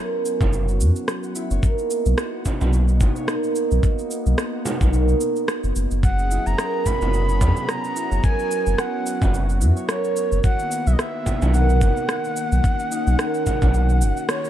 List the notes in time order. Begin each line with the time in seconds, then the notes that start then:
Already playing: F#3 B3 C#4 E4 F#4 A#4 C#5 F#5
0.25 shaker
0.41 F#1, kick, frame drum, shaker
0.53 F#4, shaker
0.68 shaker
0.81 F#2, shaker
0.96 shaker
1.08 cross-stick, shaker
1.23 F#5, shaker
1.35 E4, shaker
1.51 F#1 C#5, shaker
1.63 A#3 B3 D#4 A#4, kick, shaker
1.78 shaker
1.90 shaker
2.06 B1, shaker
2.18 F#4, cross-stick, shaker
2.45 kick, frame drum, shaker
2.61 B1, frame drum, shaker
2.73 shaker
2.88 F#5, shaker
3.01 F#1 D#4, kick, frame drum, shaker
3.16 C#5, shaker
3.28 A#4, cross-stick, shaker
3.44 shaker
3.56 shaker
3.71 B1, shaker
3.83 F#4, kick, shaker
3.99 shaker
4.11 shaker
4.26 B1, shaker
4.38 cross-stick, shaker
4.53 F#5
4.65 D#4, frame drum, shaker
4.81 B1 C#5, kick, frame drum, shaker
4.93 A#4, shaker
5.08 shaker
5.21 shaker
5.36 shaker
5.48 F#4, cross-stick, shaker
5.64 F#1, shaker
5.76 F#1, shaker
5.91 F#1, shaker
6.03 F#3 B3 C#4 G#4 F#5, kick, shaker
6.19 shaker
6.31 E4, shaker
6.46 F#1 C#5 A#5, shaker
6.58 A#4, cross-stick, shaker
6.86 B5, kick, frame drum, shaker
7.01 F#1, frame drum, shaker
7.13 F#4, shaker
7.29 shaker
7.41 F#2, kick, frame drum, shaker
7.57 shaker
7.69 A#5, cross-stick, shaker
7.84 F#5, shaker
7.96 E4, shaker
8.11 F#1 C#5, shaker
8.23 F#4 A#4 G#5, kick, shaker
8.39 shaker
8.51 shaker
8.66 F#1, shaker
8.78 F#4 F#5, cross-stick, shaker
9.06 shaker
9.22 F#1, kick, frame drum, shaker
9.34 shaker
9.49 F#5, shaker
9.61 F#2 E4, shaker
9.77 C#5, shaker
9.88 A#4 C#5, cross-stick, shaker
10.04 shaker
10.16 shaker
10.32 F#1, shaker
10.44 D#3 A#3 B3 F#4 F#5, kick, shaker
10.59 shaker
10.71 shaker
10.87 B1 E5, shaker
10.93 D#5
10.99 E5, cross-stick, shaker
11.14 F#5
11.26 D#4, kick, frame drum, shaker
11.42 B1 C#5, frame drum, shaker
11.54 A#4 F#5, shaker
11.70 shaker
11.81 F#1, kick, frame drum, shaker
11.97 shaker
12.09 cross-stick, shaker
12.24 shaker
12.36 shaker
12.52 B1, shaker
12.64 C#4, kick, shaker
12.79 F#5, shaker
12.91 D#4, shaker
13.07 B1 C#5, shaker
13.19 A#4, cross-stick, shaker
13.34 shaker
13.46 kick, frame drum, shaker
13.62 B1, kick, frame drum, shaker
13.74 F#4, shaker
13.89 shaker
14.01 F#1, shaker
14.17 shaker
14.29 C#5, cross-stick, shaker
14.44 A#4, shaker